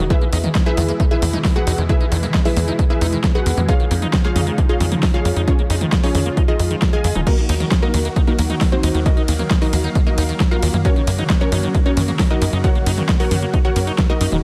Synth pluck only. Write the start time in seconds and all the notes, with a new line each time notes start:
0.10 E4 G#4 B4 E5
0.66 E4 G#4 B4 E5
1.11 E4 G#4 B4 E5
1.56 F#4 G#4 B4 F#5
1.89 E4 G#4 B4 E5
2.45 E4 G#4 B4 E5
2.90 E4 G#4 B4 E5
3.35 F#4 G#4 B4 F#5
3.68 F4 G#4 C#5 F5
4.24 F4 G#4 C#5 F5
4.69 F4 G#4 C#5 F5
5.14 F4 G#4 C#5 F5
5.48 C#4 F4 G#4 C#5
6.03 C#4 F4 G#4 C#5
6.48 D#4 F4 G#4 D#5
6.93 G#4 D#5 F5 G#5
7.27 A#3 D#4 F#4 A#4
7.83 A#3 D#4 F#4 A#4
8.27 A#3 D#4 F#4 A#4
8.72 C4 D#4 F#4 C5
9.06 D#4 F#4 A#4 D#5
9.62 D#4 F#4 A#4 D#5
10.07 D#4 F#4 A#4 D#5
10.51 F4 F#4 A#4 F5
10.85 C#4 F#4 A#4 C#5
11.41 C#4 F#4 A#4 C#5
11.86 C#4 F#4 A#4 C#5
12.30 D#4 F#4 A#4 D#5
12.64 F#4 A#4 C#5 F#5
13.20 F#4 A#4 C#5 F#5
13.65 F#4 A#4 C#5 F#5
14.10 D#4 F#4 A#4 D#5